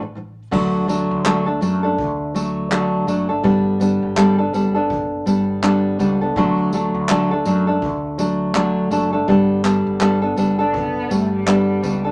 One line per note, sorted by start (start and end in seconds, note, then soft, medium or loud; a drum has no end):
0.00 0.48 A1 medium
0.00 0.14 A2 soft
0.00 0.15 D3 soft
0.00 0.16 E3 soft
0.15 0.46 A2 medium
0.15 0.47 D3 medium
0.15 0.47 E3 medium
0.51 1.07 D2 loud
0.51 0.88 D3 medium
0.51 0.87 F#3 loud
0.51 0.87 A3 medium
0.51 0.88 D4 medium
0.51 0.89 A4 medium
0.51 kick loud
0.51 crash loud
0.88 1.24 F#3 medium
0.88 1.25 A3 medium
0.88 1.25 D4 medium
0.88 1.25 A4 medium
0.88 tambourine medium
1.11 1.58 D2 medium
1.25 1.47 D3 medium
1.25 1.47 F#3 medium
1.25 1.47 A3 medium
1.25 1.46 D4 medium
1.25 1.45 A4 medium
1.25 clap loud
1.46 1.60 A3 soft
1.46 1.61 D4 medium
1.46 1.61 A4 medium
1.61 1.95 F#2 medium
1.61 1.83 F#3 medium
1.61 1.84 A3 medium
1.61 1.83 D4 medium
1.61 1.82 A4 medium
1.61 tambourine medium
1.83 2.34 A3 soft
1.83 2.35 D4 medium
1.83 2.34 A4 medium
1.98 3.04 D2 loud
1.98 kick loud
2.34 2.70 F#3 medium
2.34 2.70 A3 medium
2.34 2.70 D4 medium
2.34 2.71 A4 medium
2.34 tambourine medium
2.71 3.08 D3 medium
2.71 3.06 F#3 medium
2.71 3.06 A3 medium
2.71 3.07 D4 medium
2.71 3.08 A4 medium
2.71 clap loud
3.07 3.41 F#1 medium
3.07 3.29 F#3 medium
3.07 3.30 A3 medium
3.07 3.29 D4 medium
3.07 3.28 A4 medium
3.07 tambourine medium
3.29 3.44 A3 medium
3.29 3.44 D4 soft
3.29 3.44 A4 medium
3.43 3.99 G1 loud
3.43 3.79 G3 medium
3.43 3.80 B3 medium
3.43 3.80 D4 medium
3.43 3.81 A4 medium
3.43 kick loud
3.80 4.16 G3 medium
3.80 4.16 B3 medium
3.80 4.17 D4 medium
3.80 4.17 A4 medium
3.80 tambourine medium
4.03 4.50 G1 medium
4.17 4.39 G3 medium
4.17 4.39 B3 medium
4.17 4.38 D4 medium
4.17 4.37 A4 loud
4.17 clap loud
4.38 4.53 B3 medium
4.38 4.54 D4 medium
4.38 4.53 A4 medium
4.53 5.23 F#1 medium
4.53 4.75 G3 medium
4.53 4.76 B3 medium
4.53 4.74 D4 medium
4.53 4.73 A4 medium
4.53 tambourine medium
4.75 5.25 B3 medium
4.75 5.26 D4 medium
4.75 5.26 A4 medium
4.90 kick loud
5.26 5.96 G1 medium
5.26 5.61 G3 medium
5.26 5.62 B3 medium
5.26 5.62 D4 medium
5.26 5.63 A4 medium
5.26 tambourine medium
5.62 5.98 G3 medium
5.62 5.98 B3 medium
5.62 5.99 D4 loud
5.62 6.00 A4 medium
5.62 clap loud
5.99 6.33 C#2 medium
5.99 6.21 G3 medium
5.99 6.22 B3 medium
5.99 6.21 D4 medium
5.99 6.20 A4 medium
5.99 tambourine medium
6.21 6.37 B3 soft
6.21 6.36 D4 medium
6.21 6.36 A4 medium
6.36 6.90 D2 loud
6.36 6.73 D3 medium
6.36 6.72 F#3 medium
6.36 6.72 A3 medium
6.36 6.73 D4 medium
6.36 6.74 A4 loud
6.36 kick loud
6.73 7.09 F#3 medium
6.73 7.09 A3 medium
6.73 7.10 D4 medium
6.73 7.10 A4 medium
6.73 tambourine medium
6.95 7.42 D2 medium
7.09 7.31 D3 medium
7.09 7.32 F#3 medium
7.09 7.32 A3 medium
7.09 7.31 D4 medium
7.09 7.30 A4 loud
7.09 clap loud
7.31 7.45 A3 medium
7.31 7.46 D4 medium
7.31 7.46 A4 medium
7.45 7.79 F#2 loud
7.45 7.67 F#3 medium
7.45 7.68 A3 medium
7.45 7.67 D4 medium
7.45 7.66 A4 medium
7.45 tambourine medium
7.67 8.18 A3 medium
7.67 8.18 D4 medium
7.67 8.18 A4 medium
7.82 8.88 D2 loud
7.82 kick loud
8.18 8.53 F#3 medium
8.18 8.54 A3 medium
8.18 8.54 D4 medium
8.18 8.54 A4 medium
8.18 tambourine medium
8.54 8.91 D3 medium
8.54 8.89 F#3 medium
8.54 8.90 A3 medium
8.54 8.91 D4 loud
8.54 8.91 A4 medium
8.54 clap loud
8.90 9.25 F#1 medium
8.90 9.13 F#3 medium
8.90 9.13 A3 medium
8.90 9.13 D4 medium
8.90 9.11 A4 medium
8.90 tambourine medium
9.13 9.28 A3 medium
9.13 9.28 D4 medium
9.13 9.28 A4 medium
9.28 9.82 G1 loud
9.28 9.62 G3 medium
9.28 9.63 B3 medium
9.28 9.64 D4 medium
9.28 9.65 A4 loud
9.28 kick loud
9.63 9.99 G3 medium
9.63 9.99 B3 medium
9.63 10.00 D4 medium
9.63 10.00 A4 medium
9.63 clap loud
9.63 tambourine medium
9.87 10.34 G1 medium
10.00 10.22 G3 medium
10.00 10.23 B3 medium
10.00 10.22 D4 medium
10.00 10.21 A4 loud
10.00 clap loud
10.22 10.36 B3 soft
10.22 10.37 D4 medium
10.22 10.37 A4 medium
10.36 11.06 F#1 medium
10.36 10.59 G3 medium
10.36 10.59 B3 medium
10.36 10.59 D4 medium
10.36 10.58 A4 medium
10.36 tambourine medium
10.59 11.09 B3 medium
10.59 11.10 D4 medium
10.59 10.76 D4 medium
10.59 11.10 A4 medium
10.74 11.12 B3 loud
10.74 kick loud
11.10 11.79 G1 loud
11.10 11.45 G3 medium
11.10 11.31 A3 medium
11.10 11.45 B3 medium
11.10 11.46 D4 medium
11.10 11.46 A4 medium
11.10 tambourine medium
11.33 12.12 G3 medium
11.46 11.81 G3 medium
11.46 11.82 B3 medium
11.46 11.83 D4 medium
11.46 11.84 A4 medium
11.46 clap loud
11.83 12.12 C#2 loud
11.83 12.05 G3 medium
11.83 12.05 B3 medium
11.83 12.04 D4 medium
11.83 12.03 A4 medium
11.83 tambourine medium
12.04 12.12 B3 soft
12.04 12.12 D4 medium
12.04 12.12 A4 medium